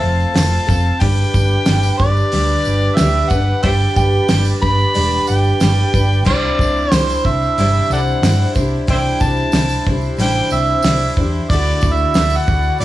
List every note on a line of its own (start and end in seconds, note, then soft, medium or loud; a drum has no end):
0.00 0.24 F1 loud
0.00 0.36 F3 medium
0.00 0.33 A3 medium
0.00 0.34 C4 medium
0.00 0.35 F4 medium
0.00 0.36 A4 loud
0.00 0.98 A4 medium
0.00 0.99 C5 medium
0.00 0.99 F5 medium
0.00 1.03 A5 loud
0.20 tambourine soft
0.34 0.57 F1 medium
0.34 0.68 A3 medium
0.34 0.69 C4 medium
0.34 0.68 F4 medium
0.34 0.66 A4 medium
0.34 snare loud
0.34 open hi-hat medium
0.34 tambourine loud
0.67 0.90 F1 medium
0.67 1.00 C4 soft
0.67 1.01 F4 medium
0.67 1.01 A4 medium
0.67 kick medium
0.67 tambourine medium
1.00 1.23 G1 medium
1.00 1.65 G3 medium
1.00 1.66 D4 medium
1.00 3.63 D4 medium
1.00 1.67 G4 medium
1.00 3.61 G4 medium
1.00 1.68 B4 medium
1.00 3.62 B4 medium
1.00 1.97 G5 loud
1.00 kick loud
1.00 open hi-hat medium
1.34 1.56 G1 medium
1.34 kick medium
1.34 tambourine medium
1.51 tambourine soft
1.65 1.89 G1 medium
1.65 2.32 G3 medium
1.65 2.33 D4 medium
1.65 2.34 G4 medium
1.65 snare loud
1.65 open hi-hat medium
1.65 tambourine medium
1.69 2.34 B4 medium
1.83 tambourine medium
1.98 2.22 G1 medium
1.98 2.97 D5 loud
1.98 kick medium
1.98 tambourine soft
2.17 tambourine soft
2.32 2.55 D2 medium
2.32 2.99 G3 medium
2.32 3.00 D4 medium
2.32 3.01 G4 medium
2.32 3.00 B4 medium
2.32 open hi-hat medium
2.32 tambourine soft
2.65 2.88 G1 medium
2.65 tambourine medium
2.81 tambourine soft
2.96 3.21 D2 medium
2.96 3.32 G3 medium
2.96 3.31 E5 medium
2.96 snare loud
2.96 open hi-hat medium
2.96 tambourine medium
3.01 3.33 D4 medium
3.01 3.32 G4 medium
3.01 3.30 B4 medium
3.30 3.53 G1 medium
3.30 3.63 G4 medium
3.30 3.64 B4 medium
3.30 3.62 F#5 loud
3.30 kick medium
3.30 tambourine medium
3.35 3.62 D4 soft
3.63 3.86 G1 medium
3.63 4.28 G3 medium
3.63 4.29 D4 medium
3.63 6.23 G4 medium
3.63 4.30 G4 medium
3.63 6.24 B4 medium
3.63 4.30 B4 medium
3.63 3.70 C5 medium
3.63 6.24 D5 medium
3.63 3.69 E5 medium
3.63 3.94 G5 loud
3.63 kick loud
3.63 open hi-hat medium
3.63 tambourine soft
3.80 tambourine soft
3.96 4.18 G1 medium
3.96 4.45 G5 loud
3.96 kick medium
3.96 tambourine medium
4.13 tambourine soft
4.28 4.51 G1 medium
4.28 4.62 G3 medium
4.28 4.62 D4 medium
4.28 4.61 G4 medium
4.28 4.59 B4 medium
4.28 snare loud
4.28 open hi-hat medium
4.28 tambourine medium
4.45 tambourine medium
4.60 4.84 G1 medium
4.60 4.94 D4 soft
4.60 4.94 G4 soft
4.60 4.94 B4 soft
4.60 5.24 B5 loud
4.60 kick medium
4.60 tambourine soft
4.79 tambourine soft
4.94 5.18 E1 medium
4.94 5.59 G3 medium
4.94 5.60 D4 medium
4.94 5.62 G4 medium
4.94 5.61 B4 medium
4.94 open hi-hat medium
4.94 tambourine soft
5.11 tambourine soft
5.27 5.51 G1 medium
5.27 6.23 G5 loud
5.27 tambourine medium
5.44 tambourine soft
5.60 5.83 G1 medium
5.60 5.93 G3 medium
5.60 5.94 D4 medium
5.60 5.94 G4 medium
5.60 5.93 B4 medium
5.60 snare loud
5.60 open hi-hat medium
5.60 tambourine medium
5.94 6.27 G1 medium
5.94 6.24 D4 soft
5.94 6.26 G4 soft
5.94 6.26 B4 medium
5.94 kick medium
5.94 tambourine medium
6.12 tambourine soft
6.24 6.48 C2 medium
6.24 6.91 C3 medium
6.24 6.95 E3 medium
6.24 6.90 G3 medium
6.24 6.92 D4 medium
6.24 8.86 D4 medium
6.24 8.86 E4 medium
6.24 6.92 E4 medium
6.24 8.86 C5 medium
6.24 6.92 C5 medium
6.24 6.92 D5 loud
6.24 kick loud
6.24 crash loud
6.59 6.81 C2 medium
6.59 kick medium
6.59 tambourine medium
6.77 tambourine soft
6.92 7.13 C2 medium
6.92 7.57 G3 medium
6.92 7.60 D4 medium
6.92 7.59 E4 medium
6.92 7.29 C5 loud
6.92 7.58 C5 medium
6.92 snare loud
6.92 open hi-hat medium
6.92 tambourine medium
7.09 tambourine medium
7.25 7.47 C2 medium
7.25 7.92 E5 loud
7.25 kick medium
7.25 tambourine soft
7.42 tambourine soft
7.58 7.79 G1 medium
7.58 8.24 C3 medium
7.58 8.27 E3 medium
7.58 8.21 G3 medium
7.58 8.24 D4 medium
7.58 8.25 E4 medium
7.58 8.25 C5 medium
7.58 open hi-hat medium
7.58 tambourine soft
7.90 8.12 C2 medium
7.90 7.99 A4 medium
7.90 8.00 D5 medium
7.90 8.53 F#5 medium
7.90 tambourine medium
8.07 tambourine soft
8.22 8.44 G2 medium
8.22 8.56 G3 medium
8.22 8.56 D4 medium
8.22 8.55 E4 medium
8.22 snare loud
8.22 open hi-hat medium
8.22 tambourine loud
8.26 8.53 C5 medium
8.55 8.77 C2 medium
8.55 8.87 G3 soft
8.55 8.87 D4 soft
8.55 8.88 E4 medium
8.55 8.88 C5 medium
8.55 kick medium
8.55 tambourine medium
8.87 9.10 C2 medium
8.87 9.53 C3 medium
8.87 9.57 E3 medium
8.87 9.53 G3 medium
8.87 9.54 D4 medium
8.87 11.48 D4 medium
8.87 9.55 E4 medium
8.87 11.48 E4 medium
8.87 9.54 C5 medium
8.87 11.48 C5 medium
8.87 8.97 C5 medium
8.87 8.99 E5 medium
8.87 9.23 G5 loud
8.87 kick loud
8.87 open hi-hat medium
9.20 9.42 C2 medium
9.20 9.87 A5 loud
9.20 kick medium
9.20 tambourine medium
9.37 tambourine soft
9.52 9.75 C2 medium
9.52 9.87 G3 medium
9.52 9.87 D4 medium
9.52 9.87 E4 medium
9.52 snare loud
9.52 open hi-hat medium
9.52 tambourine medium
9.57 9.86 C5 medium
9.69 tambourine medium
9.87 10.08 C2 medium
9.87 10.18 G3 soft
9.87 10.19 D4 soft
9.87 10.19 E4 medium
9.87 10.20 C5 medium
9.87 kick medium
10.01 tambourine soft
10.17 10.40 A1 loud
10.17 10.84 C3 medium
10.17 10.85 E3 medium
10.17 10.84 G3 medium
10.17 10.87 D4 medium
10.17 10.85 E4 medium
10.17 open hi-hat medium
10.17 tambourine soft
10.21 10.85 C5 medium
10.21 10.51 G5 loud
10.50 10.73 C2 medium
10.50 11.14 E5 medium
10.50 tambourine medium
10.67 tambourine soft
10.83 11.06 C2 medium
10.83 11.18 G3 medium
10.83 snare loud
10.83 open hi-hat medium
10.83 tambourine loud
10.87 11.18 D4 medium
10.87 11.17 E4 medium
10.87 11.16 C5 medium
11.17 11.39 E2 loud
11.17 11.51 G3 medium
11.17 11.51 D4 soft
11.17 11.50 E4 medium
11.17 11.50 C5 medium
11.17 kick medium
11.50 11.71 D2 loud
11.50 12.16 D3 medium
11.50 12.14 A3 medium
11.50 12.85 E4 medium
11.50 12.15 E4 medium
11.50 12.85 F#4 medium
11.50 12.17 F#4 medium
11.50 11.94 D5 medium
11.50 12.85 D5 medium
11.50 kick loud
11.50 open hi-hat medium
11.54 12.17 A4 medium
11.81 12.04 D2 medium
11.81 kick medium
11.81 tambourine medium
11.93 12.38 E5 medium
11.97 tambourine soft
12.14 12.36 D2 medium
12.14 12.80 A3 medium
12.14 12.80 E4 medium
12.14 12.81 F#4 medium
12.14 snare loud
12.14 open hi-hat medium
12.14 tambourine loud
12.18 12.81 A4 medium
12.30 tambourine medium
12.37 12.80 F#5 medium
12.47 12.69 D2 medium
12.47 kick medium
12.47 tambourine soft
12.62 tambourine soft
12.78 12.85 A1 medium
12.78 12.85 D3 medium
12.78 12.85 A3 medium
12.78 12.85 E4 medium
12.78 12.85 D5 medium
12.78 open hi-hat medium
12.78 tambourine soft